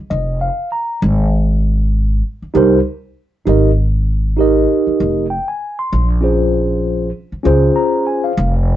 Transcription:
0, 0, Header, 1, 4, 480
1, 0, Start_track
1, 0, Tempo, 612245
1, 800, Time_signature, 4, 2, 24, 8
1, 6870, End_track
2, 0, Start_track
2, 0, Title_t, "Tine electric piano"
2, 0, Program_c, 0, 4
2, 81, Note_on_c, 0, 75, 70
2, 304, Note_off_c, 0, 75, 0
2, 323, Note_on_c, 0, 77, 73
2, 545, Note_off_c, 0, 77, 0
2, 564, Note_on_c, 0, 82, 67
2, 786, Note_off_c, 0, 82, 0
2, 1989, Note_on_c, 0, 63, 85
2, 1996, Note_on_c, 0, 67, 81
2, 2006, Note_on_c, 0, 70, 81
2, 2015, Note_on_c, 0, 72, 99
2, 2174, Note_off_c, 0, 63, 0
2, 2178, Note_off_c, 0, 67, 0
2, 2183, Note_off_c, 0, 70, 0
2, 2187, Note_off_c, 0, 72, 0
2, 2710, Note_on_c, 0, 63, 69
2, 2718, Note_on_c, 0, 67, 63
2, 2727, Note_on_c, 0, 70, 62
2, 2737, Note_on_c, 0, 75, 78
2, 2894, Note_off_c, 0, 63, 0
2, 2898, Note_off_c, 0, 67, 0
2, 2903, Note_off_c, 0, 70, 0
2, 2908, Note_off_c, 0, 75, 0
2, 3425, Note_on_c, 0, 63, 74
2, 3436, Note_on_c, 0, 67, 71
2, 3444, Note_on_c, 0, 70, 70
2, 3454, Note_on_c, 0, 75, 82
2, 4112, Note_off_c, 0, 63, 0
2, 4118, Note_off_c, 0, 67, 0
2, 4122, Note_off_c, 0, 70, 0
2, 4127, Note_off_c, 0, 75, 0
2, 4157, Note_on_c, 0, 79, 65
2, 4291, Note_off_c, 0, 79, 0
2, 4297, Note_on_c, 0, 80, 59
2, 4526, Note_off_c, 0, 80, 0
2, 4539, Note_on_c, 0, 84, 64
2, 4767, Note_off_c, 0, 84, 0
2, 4867, Note_on_c, 0, 61, 68
2, 4875, Note_on_c, 0, 65, 61
2, 4885, Note_on_c, 0, 68, 62
2, 4892, Note_on_c, 0, 72, 71
2, 5553, Note_off_c, 0, 61, 0
2, 5557, Note_off_c, 0, 65, 0
2, 5562, Note_off_c, 0, 68, 0
2, 5566, Note_off_c, 0, 72, 0
2, 5826, Note_on_c, 0, 61, 85
2, 5834, Note_on_c, 0, 65, 73
2, 5842, Note_on_c, 0, 68, 79
2, 5851, Note_on_c, 0, 72, 90
2, 6082, Note_on_c, 0, 82, 68
2, 6309, Note_off_c, 0, 82, 0
2, 6325, Note_on_c, 0, 80, 62
2, 6455, Note_off_c, 0, 80, 0
2, 6460, Note_on_c, 0, 77, 63
2, 6513, Note_off_c, 0, 61, 0
2, 6517, Note_off_c, 0, 65, 0
2, 6521, Note_off_c, 0, 68, 0
2, 6525, Note_off_c, 0, 72, 0
2, 6688, Note_off_c, 0, 77, 0
2, 6870, End_track
3, 0, Start_track
3, 0, Title_t, "Upright bass"
3, 0, Program_c, 1, 32
3, 83, Note_on_c, 1, 29, 89
3, 371, Note_off_c, 1, 29, 0
3, 802, Note_on_c, 1, 32, 98
3, 1730, Note_off_c, 1, 32, 0
3, 1998, Note_on_c, 1, 36, 87
3, 2182, Note_off_c, 1, 36, 0
3, 2718, Note_on_c, 1, 32, 87
3, 3648, Note_off_c, 1, 32, 0
3, 3921, Note_on_c, 1, 29, 80
3, 4210, Note_off_c, 1, 29, 0
3, 4646, Note_on_c, 1, 34, 90
3, 5572, Note_off_c, 1, 34, 0
3, 5842, Note_on_c, 1, 37, 86
3, 6024, Note_off_c, 1, 37, 0
3, 6565, Note_on_c, 1, 29, 96
3, 6870, Note_off_c, 1, 29, 0
3, 6870, End_track
4, 0, Start_track
4, 0, Title_t, "Muted upright bass strokes"
4, 1900, Note_on_c, 9, 29, 41
4, 1979, Note_off_c, 9, 29, 0
4, 3818, Note_on_c, 9, 29, 46
4, 3897, Note_off_c, 9, 29, 0
4, 5741, Note_on_c, 9, 29, 45
4, 5819, Note_off_c, 9, 29, 0
4, 6870, End_track
0, 0, End_of_file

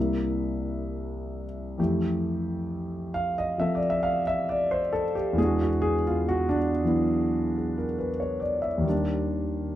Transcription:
0, 0, Header, 1, 2, 480
1, 0, Start_track
1, 0, Key_signature, -1, "major"
1, 0, Tempo, 925926
1, 926, Tempo, 896861
1, 927, Time_signature, 4, 2, 24, 8
1, 2846, Tempo, 869565
1, 5265, End_track
2, 0, Start_track
2, 0, Title_t, "Grand piano"
2, 0, Program_c, 0, 0
2, 0, Note_on_c, 0, 36, 44
2, 0, Note_on_c, 0, 48, 39
2, 0, Note_on_c, 0, 58, 42
2, 0, Note_on_c, 0, 64, 46
2, 0, Note_on_c, 0, 76, 59
2, 57, Control_c, 0, 64, 127
2, 747, Note_off_c, 0, 76, 0
2, 923, Note_on_c, 0, 41, 46
2, 927, Note_off_c, 0, 36, 0
2, 927, Note_on_c, 0, 52, 46
2, 928, Note_off_c, 0, 48, 0
2, 929, Note_on_c, 0, 57, 46
2, 930, Note_off_c, 0, 58, 0
2, 931, Note_off_c, 0, 64, 0
2, 932, Note_on_c, 0, 67, 58
2, 935, Control_c, 0, 64, 0
2, 1034, Control_c, 0, 64, 127
2, 1651, Note_on_c, 0, 77, 75
2, 1768, Note_off_c, 0, 77, 0
2, 1780, Note_on_c, 0, 75, 72
2, 1871, Note_off_c, 0, 75, 0
2, 1886, Note_on_c, 0, 53, 41
2, 1894, Note_on_c, 0, 76, 72
2, 1895, Note_on_c, 0, 60, 35
2, 1902, Note_on_c, 0, 69, 46
2, 1977, Note_on_c, 0, 74, 61
2, 1998, Note_off_c, 0, 76, 0
2, 2037, Note_off_c, 0, 74, 0
2, 2057, Note_on_c, 0, 76, 74
2, 2126, Note_on_c, 0, 77, 81
2, 2215, Note_off_c, 0, 76, 0
2, 2243, Note_off_c, 0, 77, 0
2, 2256, Note_on_c, 0, 76, 77
2, 2347, Note_off_c, 0, 76, 0
2, 2374, Note_on_c, 0, 74, 64
2, 2491, Note_on_c, 0, 72, 71
2, 2529, Note_off_c, 0, 74, 0
2, 2598, Note_off_c, 0, 69, 0
2, 2606, Note_on_c, 0, 69, 73
2, 2669, Note_off_c, 0, 72, 0
2, 2720, Note_off_c, 0, 67, 0
2, 2723, Note_off_c, 0, 69, 0
2, 2728, Note_on_c, 0, 67, 67
2, 2822, Note_on_c, 0, 40, 58
2, 2823, Note_off_c, 0, 67, 0
2, 2827, Note_off_c, 0, 52, 0
2, 2835, Note_on_c, 0, 52, 51
2, 2844, Note_off_c, 0, 53, 0
2, 2845, Note_off_c, 0, 41, 0
2, 2848, Note_off_c, 0, 57, 0
2, 2848, Note_on_c, 0, 56, 51
2, 2849, Note_off_c, 0, 60, 0
2, 2851, Note_on_c, 0, 68, 82
2, 2854, Control_c, 0, 64, 0
2, 2870, Note_on_c, 0, 62, 52
2, 2885, Note_on_c, 0, 66, 62
2, 2952, Control_c, 0, 64, 127
2, 2971, Note_off_c, 0, 66, 0
2, 2979, Note_on_c, 0, 66, 65
2, 3014, Note_off_c, 0, 68, 0
2, 3090, Note_on_c, 0, 68, 87
2, 3159, Note_off_c, 0, 66, 0
2, 3210, Note_off_c, 0, 68, 0
2, 3230, Note_on_c, 0, 65, 68
2, 3319, Note_off_c, 0, 65, 0
2, 3349, Note_on_c, 0, 66, 77
2, 3453, Note_off_c, 0, 62, 0
2, 3461, Note_on_c, 0, 62, 76
2, 3503, Note_off_c, 0, 66, 0
2, 3572, Note_off_c, 0, 62, 0
2, 3647, Note_off_c, 0, 52, 0
2, 3655, Note_on_c, 0, 52, 46
2, 3662, Note_on_c, 0, 54, 40
2, 3663, Note_on_c, 0, 59, 41
2, 3673, Note_on_c, 0, 64, 49
2, 4054, Note_on_c, 0, 68, 43
2, 4173, Note_on_c, 0, 70, 48
2, 4201, Note_off_c, 0, 68, 0
2, 4289, Note_on_c, 0, 71, 51
2, 4340, Note_off_c, 0, 70, 0
2, 4405, Note_on_c, 0, 73, 49
2, 4516, Note_on_c, 0, 74, 57
2, 4517, Note_off_c, 0, 71, 0
2, 4615, Note_off_c, 0, 73, 0
2, 4637, Note_on_c, 0, 76, 57
2, 4669, Note_off_c, 0, 74, 0
2, 4724, Note_on_c, 0, 39, 50
2, 4746, Note_on_c, 0, 51, 48
2, 4757, Note_off_c, 0, 40, 0
2, 4765, Note_off_c, 0, 52, 0
2, 4765, Note_on_c, 0, 55, 47
2, 4768, Note_off_c, 0, 54, 0
2, 4769, Note_off_c, 0, 59, 0
2, 4771, Note_off_c, 0, 56, 0
2, 4774, Note_off_c, 0, 64, 0
2, 4778, Control_c, 0, 64, 0
2, 4787, Note_on_c, 0, 62, 56
2, 4810, Note_off_c, 0, 76, 0
2, 4862, Control_c, 0, 64, 127
2, 5265, Note_off_c, 0, 39, 0
2, 5265, Note_off_c, 0, 51, 0
2, 5265, Note_off_c, 0, 55, 0
2, 5265, Note_off_c, 0, 62, 0
2, 5265, End_track
0, 0, End_of_file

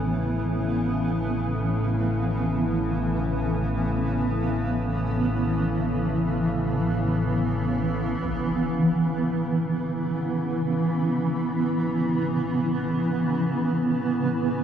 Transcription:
0, 0, Header, 1, 5, 480
1, 0, Start_track
1, 0, Key_signature, 3, "major"
1, 0, Tempo, 500000
1, 14052, End_track
2, 0, Start_track
2, 0, Title_t, "Singing bowl"
2, 0, Program_c, 0, 14
2, 0, Note_on_c, 0, 56, 58
2, 7888, Note_on_c, 0, 52, 64
2, 7892, Note_on_c, 0, 64, 60
2, 7908, Note_off_c, 0, 56, 0
2, 14052, Note_off_c, 0, 52, 0
2, 14052, Note_off_c, 0, 64, 0
2, 14052, End_track
3, 0, Start_track
3, 0, Title_t, "Ambient pad"
3, 0, Program_c, 1, 92
3, 0, Note_on_c, 1, 49, 55
3, 0, Note_on_c, 1, 52, 69
3, 0, Note_on_c, 1, 59, 64
3, 14052, Note_off_c, 1, 49, 0
3, 14052, Note_off_c, 1, 52, 0
3, 14052, Note_off_c, 1, 59, 0
3, 14052, End_track
4, 0, Start_track
4, 0, Title_t, "Synth drone"
4, 0, Program_c, 2, 95
4, 0, Note_on_c, 2, 33, 64
4, 0, Note_on_c, 2, 45, 64
4, 7886, Note_off_c, 2, 45, 0
4, 7888, Note_off_c, 2, 33, 0
4, 7897, Note_on_c, 2, 45, 74
4, 7900, Note_on_c, 2, 33, 68
4, 14052, Note_off_c, 2, 33, 0
4, 14052, Note_off_c, 2, 45, 0
4, 14052, End_track
5, 0, Start_track
5, 0, Title_t, "Impact"
5, 0, Program_c, 3, 103
5, 7895, Note_on_c, 3, 60, 77
5, 8096, Note_off_c, 3, 60, 0
5, 14052, End_track
0, 0, End_of_file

